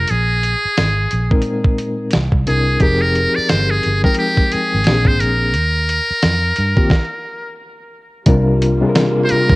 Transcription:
Already playing: reed electric piano C3 F4 G#4, muted trumpet A#4
0.08 fingered electric bass A#1, muted trumpet G#4, closed hi-hat
0.43 closed hi-hat
0.65 muted fingered electric bass stroke
0.77 fingered electric bass G#1, snare, closed hi-hat
1.11 fingered electric bass A#1, closed hi-hat
1.31 reed electric piano A#2 G#3 C4 D#4 A#4, kick
1.42 closed hi-hat
1.64 kick
1.78 closed hi-hat
2.11 snare, closed hi-hat
2.15 fingered electric bass C2
2.32 fingered electric bass C2, kick
2.46 fingered electric bass C2, reed electric piano C3 C4 D4 E4 A#4, muted trumpet G#4, closed hi-hat
2.80 fingered electric bass F1, reed electric piano F3 C4 D#4 G4 G#4 A#4, muted trumpet G4, kick, closed hi-hat
3.02 muted trumpet A#4
3.15 closed hi-hat
3.35 muted trumpet D5, muted fingered electric bass stroke
3.49 fingered electric bass G1, muted trumpet C5, snare, closed hi-hat
3.70 muted trumpet G#4
3.83 fingered electric bass G1, closed hi-hat
4.03 reed electric piano F3 G#3 C4 D#4 A#4 G5, muted trumpet A#4, kick
4.15 closed hi-hat
4.19 muted trumpet G4
4.37 kick
4.52 muted trumpet G#4, muted fingered electric bass stroke, closed hi-hat
4.74 fingered electric bass G#1
4.84 fingered electric bass A#1, reed electric piano A#2 A#3 C4 D4 G4, snare, closed hi-hat
4.94 reed electric piano G#4
5.05 fingered electric bass G#1, muted trumpet C5, kick
5.20 fingered electric bass A#1, muted trumpet A#4, closed hi-hat
5.54 fingered electric bass D#2, closed hi-hat
5.89 closed hi-hat
6.11 muted fingered electric bass stroke
6.22 fingered electric bass F2, snare, closed hi-hat
6.56 fingered electric bass G2, closed hi-hat
6.76 reed electric piano D#3 A#3 C4 F4 G4, kick
6.90 kick, snare
8.26 fingered electric bass C2, string section C3 G3 A#3 F4, reed electric piano C3 G3 D4 F4 A#4, kick, closed hi-hat
8.62 closed hi-hat
8.81 reed electric piano C3 G3 D4 F4 G#4
8.89 reed electric piano A#4
8.95 snare, closed hi-hat
9.24 muted trumpet C5
9.29 muted trumpet A#4, muted fingered electric bass stroke, closed hi-hat
9.49 fingered electric bass A#1, kick

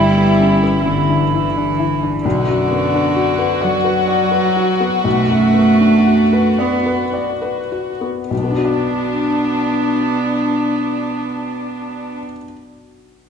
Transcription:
Already playing: double bass G1, felt piano G2 B3 E4, cello G3, violin section E4, viola E4
0.17 felt piano B3
0.40 felt piano C#4
0.63 felt piano B3
0.85 felt piano D3, cello E3
1.09 felt piano D4
1.34 felt piano E4
1.57 felt piano D4
1.79 felt piano E4
2.03 felt piano D4
2.25 felt piano B1, cello D3, violin section F#4
2.49 felt piano F#2
2.71 felt piano B3
2.94 felt piano D4
3.16 felt piano F#4
3.38 felt piano B4
3.61 cello F#3, felt piano D5
3.84 felt piano B4
4.08 felt piano D5
4.31 felt piano B4
4.56 felt piano F#4
4.80 felt piano B3
5.04 felt piano B1, cello A3
5.30 felt piano F#2
5.54 felt piano B3
5.81 felt piano D4
6.07 felt piano F#4
6.33 felt piano B4
6.59 cello B3, felt piano D5
6.86 felt piano B4
7.13 felt piano D5
7.42 felt piano B4
7.72 felt piano F#4
8.01 felt piano B3
8.30 felt piano B1, cello B3, violin section D4
8.37 felt piano B2
8.44 felt piano B3
8.51 felt piano D4
8.58 felt piano F#4
8.65 felt piano D5

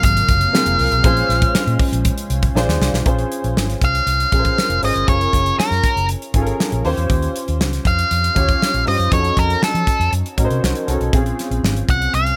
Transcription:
Already playing: grand piano C3 F4 G#4 A#4, analog synth pad F#3 A#3
0.03 fingered electric bass G#1, lead electric guitar F5, kick, closed hi-hat
0.17 closed hi-hat
0.28 fingered electric bass F#1, kick, closed hi-hat
0.41 closed hi-hat
0.53 grand piano C4 F4 G#4 A#4, snare
0.66 fingered electric bass F1, closed hi-hat
0.79 fingered electric bass C2, open hi-hat
0.92 fingered electric bass B1, closed hi-hat
1.03 fingered electric bass A#1, analog synth pad G#3 C#4, grand piano C#4 F4 G#4 C5, kick, closed hi-hat
1.17 closed hi-hat
1.29 fingered electric bass A#1, snare, closed hi-hat
1.42 kick, closed hi-hat
1.55 muted fingered electric bass stroke, snare
1.67 fingered electric bass A#2, closed hi-hat
1.79 kick, open hi-hat
1.92 fingered electric bass A#1, closed hi-hat
2.05 kick, closed hi-hat
2.18 closed hi-hat
2.30 fingered electric bass C2, closed hi-hat
2.43 kick, closed hi-hat
2.54 fingered electric bass A#1, analog synth pad D4, grand piano D4 F4 G#4 C5, snare
2.68 fingered electric bass D#2, snare
2.81 fingered electric bass C2, snare
2.93 fingered electric bass B1, snare
3.05 fingered electric bass A#1, grand piano C#4 F4 G#4 C5, kick, closed hi-hat
3.19 closed hi-hat
3.32 closed hi-hat
3.44 fingered electric bass A#1, closed hi-hat
3.56 fingered electric bass G#1, snare
3.70 snare, closed hi-hat
3.82 fingered electric bass C2, lead electric guitar F5, kick, closed hi-hat
3.95 closed hi-hat
4.06 fingered electric bass C2, closed hi-hat
4.20 closed hi-hat
4.32 fingered electric bass A#1, grand piano C#4 F4 G#4 A#4, kick, closed hi-hat
4.39 grand piano C5
4.45 kick, closed hi-hat
4.58 snare
4.69 fingered electric bass F1, closed hi-hat
4.82 fingered electric bass G#1, grand piano C#4 F4 G#4 C5, lead electric guitar D#5, open hi-hat
4.95 fingered electric bass G1, closed hi-hat
5.07 fingered electric bass F#1, grand piano C#4 F4 G#4 A#4, lead electric guitar C#5, kick, closed hi-hat
5.21 closed hi-hat
5.33 fingered electric bass F#1, kick, snare, closed hi-hat
5.46 closed hi-hat
5.58 lead electric guitar A#4, muted fingered electric bass stroke, snare
5.71 fingered electric bass F#2, snare, closed hi-hat
5.84 kick, closed hi-hat
5.96 fingered electric bass F#1, closed hi-hat
6.09 closed hi-hat
6.22 closed hi-hat
6.34 fingered electric bass G#1, grand piano C#4 F4 G#4 A4, kick, closed hi-hat
6.42 grand piano A#4
6.47 closed hi-hat
6.60 snare
6.72 fingered electric bass A#1, closed hi-hat
6.84 fingered electric bass D#2, grand piano C#4 F4 G4 C5, open hi-hat
6.97 fingered electric bass E2, closed hi-hat
7.10 fingered electric bass D#2, kick, closed hi-hat
7.22 closed hi-hat
7.36 closed hi-hat
7.48 fingered electric bass D#2, closed hi-hat
7.61 fingered electric bass C#2, snare
7.73 snare, closed hi-hat
7.85 fingered electric bass F2, lead electric guitar F5, kick, closed hi-hat
7.99 closed hi-hat
8.11 fingered electric bass F2, closed hi-hat
8.24 closed hi-hat
8.35 fingered electric bass D#2, grand piano C#4 F4 G4 C#5, kick, closed hi-hat
8.49 kick, closed hi-hat
8.62 snare
8.74 fingered electric bass A#1, closed hi-hat
8.85 fingered electric bass G2, grand piano C#4 F4 G4 C5, lead electric guitar D#5, open hi-hat
8.99 fingered electric bass F#2, closed hi-hat
9.11 fingered electric bass F2, grand piano C#4 D#4 F#4 A4, lead electric guitar C#5, kick, closed hi-hat
9.24 closed hi-hat
9.37 fingered electric bass F2, lead electric guitar A#4, kick, closed hi-hat
9.50 closed hi-hat
9.62 lead electric guitar A4, muted fingered electric bass stroke, snare
9.74 fingered electric bass F3, closed hi-hat
9.87 kick, closed hi-hat
9.99 fingered electric bass F2, closed hi-hat
10.12 fingered electric bass F#2, closed hi-hat
10.26 closed hi-hat
10.37 fingered electric bass A2, grand piano C#4 D#4 F#4 A#4, kick, closed hi-hat
10.45 grand piano C5
10.50 fingered electric bass C3, closed hi-hat
10.63 fingered electric bass C2, snare
10.75 closed hi-hat
10.87 fingered electric bass C2, grand piano C#4 D#4 F#4 A4, closed hi-hat
11.00 fingered electric bass B1, closed hi-hat
11.13 fingered electric bass A#1, grand piano C4 C#4 F4 G#4, kick, closed hi-hat
11.26 closed hi-hat
11.39 snare, closed hi-hat
11.51 fingered electric bass A#1, closed hi-hat
11.63 fingered electric bass G#1, snare
11.76 closed hi-hat
11.89 fingered electric bass C2, lead electric guitar F#5, kick, closed hi-hat
12.02 closed hi-hat
12.14 fingered electric bass C2, lead electric guitar F5, closed hi-hat
12.27 closed hi-hat

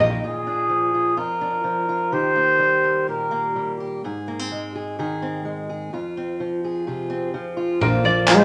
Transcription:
Already playing: harmonium D#3 G3 A#3 G4, ukulele A#4
0.00 picked electric bass A#1, steel-string acoustic guitar D#3 A#3 D#4 G4, ukulele D#5
0.10 steel-string acoustic guitar A#3 D#4 G4
0.23 steel-string acoustic guitar A#2 F4, trumpet G#4
0.47 steel-string acoustic guitar D4
0.69 steel-string acoustic guitar F3
0.94 steel-string acoustic guitar F4
1.17 steel-string acoustic guitar F2 F4, trumpet A#4
1.41 steel-string acoustic guitar D4
1.64 steel-string acoustic guitar F3
1.89 steel-string acoustic guitar F4
2.12 steel-string acoustic guitar D#3 G4, trumpet C5
2.36 steel-string acoustic guitar A#3
2.59 steel-string acoustic guitar G3
2.84 steel-string acoustic guitar A#4
3.08 steel-string acoustic guitar A#2 G4, trumpet A#4
3.31 steel-string acoustic guitar A#3
3.56 steel-string acoustic guitar G3
3.80 steel-string acoustic guitar G4
4.04 steel-string acoustic guitar G#2 G#4
4.28 steel-string acoustic guitar A#3
4.39 steel-string acoustic guitar C4
4.52 steel-string acoustic guitar G#3
4.75 steel-string acoustic guitar G#4
4.99 steel-string acoustic guitar D#3 G#4
5.22 steel-string acoustic guitar C4
5.45 steel-string acoustic guitar G#3
5.69 steel-string acoustic guitar G#4
5.93 steel-string acoustic guitar F2 F4
6.17 steel-string acoustic guitar C4
6.40 steel-string acoustic guitar F3
6.64 steel-string acoustic guitar G#4
6.87 steel-string acoustic guitar C3 F4
7.10 steel-string acoustic guitar C4
7.34 steel-string acoustic guitar F3
7.57 steel-string acoustic guitar F4
7.81 picked electric bass A#1, steel-string acoustic guitar A#2 F3 A#3 D4 F4, harmonium D3 F3 A#3 F4, ukulele A#4
8.04 steel-string acoustic guitar F3 A#3 D4 F4, ukulele D5
8.28 steel-string acoustic guitar A#2 F3 A#3 D4 F4, french horn F3, trumpet A#4, ukulele F5, clap
8.35 french horn G#3, trumpet C5

